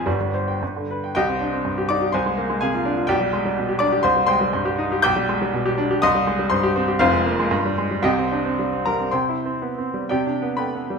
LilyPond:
<<
  \new Staff \with { instrumentName = "Grand piano" } { \time 2/4 \key c \minor \tempo 4 = 121 g4. r8 | <g' ees'' g''>4. <d'' d'''>8 | <c'' aes'' c'''>4 <aes' f'' aes''>4 | <g' d'' g''>4. <d'' d'''>8 |
<c'' c'''>8 <c'' g'' c'''>4. | <g'' d''' g'''>2 | <ees'' c''' ees'''>4 <c'' c'''>8 r8 | <f' c'' f''>2 |
<g' ees'' g''>4 r8 <bes' bes''>8 | \key c \major <c'' g'' c'''>2 | <g' d'' g''>4 <b' g'' b''>4 | }
  \new Staff \with { instrumentName = "Grand piano" } { \clef bass \time 2/4 \key c \minor <g,, g,>16 g16 c''16 g''16 g,16 d16 b'16 g''16 | c,16 c'16 d'16 c'16 g,16 g'16 ees'16 g'16 | c,16 aes16 bes16 aes16 c16 f'16 d'16 f'16 | b,,16 g16 aes16 g16 b,16 g'16 d'16 g'16 |
c,16 g16 aes16 g16 g,16 g'16 ees'16 g'16 | b,,16 g16 aes16 g16 b,16 g'16 d'16 g'16 | c,16 g16 aes16 g16 g,16 g'16 c'16 g'16 | <f,, f,>16 aes16 bes16 aes16 g,16 g16 aes16 g16 |
<c, c>16 c'16 d'16 c'16 g16 c'16 g16 c'16 | \key c \major \tuplet 3/2 { c8 e'8 c'8 b8 c'8 g8 } | \tuplet 3/2 { c8 d'8 b8 a8 b8 g8 } | }
>>